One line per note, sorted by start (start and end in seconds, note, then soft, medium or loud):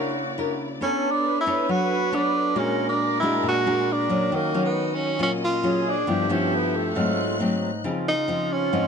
0.00 0.79 C#3 medium
0.00 0.80 A#3 medium
0.00 0.22 D4 soft
0.00 0.22 E4 soft
0.00 0.79 E4 medium
0.00 0.59 F#4 medium
0.00 0.77 F#4 medium
0.00 0.22 A#4 medium
0.00 0.79 D5 medium
0.38 0.67 D4 soft
0.38 0.67 E4 medium
0.38 0.68 A#4 soft
0.79 2.55 B3 medium
0.79 1.67 B3 medium
0.79 1.13 C#4 medium
0.79 2.54 D4 medium
0.79 1.44 D4 soft
0.79 2.55 A4 medium
0.79 1.22 A4 medium
0.79 1.44 A4 soft
0.79 2.54 C#5 medium
0.79 1.44 C#5 medium
1.11 1.40 D4 medium
1.25 2.57 B4 loud
1.40 1.72 E4 medium
1.46 2.09 D4 medium
1.46 2.09 A4 medium
1.46 2.10 C#5 medium
1.69 2.55 F#3 medium
1.69 2.16 F#4 loud
2.12 2.53 D4 medium
2.12 2.61 D4 medium
2.12 2.53 A4 medium
2.12 2.54 C#5 medium
2.55 3.42 A#2 medium
2.55 3.19 G#3 medium
2.55 4.31 A#3 medium
2.55 2.87 C#4 medium
2.55 3.19 D4 medium
2.55 3.19 F#4 medium
2.55 4.31 G#4 medium
2.55 4.32 A#4 loud
2.55 4.31 D5 medium
2.89 3.15 D4 medium
3.19 3.63 G#3 medium
3.19 3.63 D4 medium
3.19 3.45 E4 medium
3.24 3.63 F#4 medium
3.43 4.30 A#2 medium
3.48 3.94 F#4 loud
3.66 4.07 G#3 medium
3.66 4.07 D4 medium
3.66 4.07 F#4 medium
3.92 4.37 D4 medium
4.10 4.53 F#3 medium
4.10 4.54 C#4 medium
4.32 5.18 D#3 medium
4.32 4.63 A#3 medium
4.32 6.07 C#4 medium
4.32 5.33 F#4 medium
4.32 6.07 D#5 medium
4.54 5.17 F#3 medium
4.54 5.17 C#4 medium
4.65 4.96 B3 medium
4.94 5.22 C#4 medium
5.19 6.06 A#2 medium
5.19 5.60 F#3 medium
5.19 5.61 C#4 medium
5.19 5.32 C#4 medium
5.19 5.61 F4 medium
5.45 5.90 F4 medium
5.63 5.94 F#3 medium
5.63 5.94 C#4 medium
5.63 5.94 F4 medium
5.63 6.05 G#4 loud
5.89 6.34 D4 medium
6.07 6.94 G2 medium
6.07 6.26 F3 medium
6.07 6.95 B3 medium
6.07 6.27 B3 medium
6.07 6.27 E4 medium
6.07 6.95 G4 medium
6.07 6.97 G4 loud
6.07 7.82 A4 medium
6.07 6.95 E5 medium
6.29 6.93 F3 medium
6.29 6.93 B3 medium
6.29 6.56 C#4 medium
6.29 6.93 E4 medium
6.55 6.78 B3 medium
6.77 7.64 A3 medium
6.94 7.82 G#2 medium
6.94 7.37 F#3 medium
6.94 7.37 A3 medium
6.94 7.83 C4 medium
6.94 7.38 C4 medium
6.94 7.41 F4 medium
6.94 7.83 G#4 medium
6.94 7.83 F#6 medium
7.40 7.70 F#3 medium
7.40 7.70 A3 soft
7.40 7.70 C4 medium
7.40 7.85 D#4 medium
7.84 8.71 C#3 medium
7.84 8.13 F3 soft
7.84 8.13 C4 medium
7.84 8.13 D#4 medium
7.84 8.87 F4 medium
8.08 8.54 D#4 loud
8.28 8.69 F3 medium
8.28 8.69 C4 soft
8.28 8.70 D#4 medium
8.53 8.87 C#4 medium
8.73 8.87 G#2 medium
8.73 8.87 F3 medium
8.73 8.87 C4 medium
8.73 8.87 D#4 medium